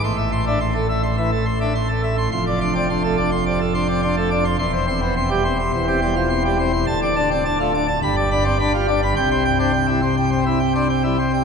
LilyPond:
<<
  \new Staff \with { instrumentName = "Pipe organ" } { \time 4/4 \key c \major \tempo 4 = 105 << { c'''16 e''16 c'''16 e''16 c'''16 a'16 e''16 c'''16 e''16 a'16 c'''16 e''16 c'''16 a'16 e''16 c'''16 | c'''16 d''16 c'''16 d''16 c'''16 a'16 d''16 c'''16 d''16 a'16 c'''16 d''16 c'''16 a'16 d''16 c'''16 | c'''16 c''16 c'''16 c''16 c'''16 g'16 c''16 c'''16 c''16 g'16 c'''16 c''16 c'''16 g'16 c''16 c'''16 | a''16 d''16 a''16 d''16 a''16 f'16 d''16 a''16 b''16 d''16 b''16 d''16 b''16 f'16 d''16 b''16 |
g''16 c''16 g''16 c''16 g''16 e'16 c''16 g''16 c''16 e'16 g''16 c''16 g''16 e'16 c''16 g''16 | } \\ { a,8. d'16 r16 a16 r8 e16 r8 d'16 r16 a16 r8 | f,8 d'16 c'16 d'16 a16 d'16 r16 c16 r16 d'16 c'16 d'16 a16 d'16 r16 | e,8 c'16 b16 c'16 g16 c'16 r16 e,16 c'16 g16 f16 c'16 g16 c'16 r16 | d,8 d'16 c'16 d'16 a16 d'16 r16 g,8 d'16 c'16 d'16 g16 d'16 r16 |
c8. d'16 r16 g16 r8 c'16 r8 d'16 r16 g16 r8 | } >> }
  \new Staff \with { instrumentName = "Pipe organ" } { \clef bass \time 4/4 \key c \major a,,1 | f,,1 | e,,2 e,,2 | d,,2 g,,2 |
c,1 | }
>>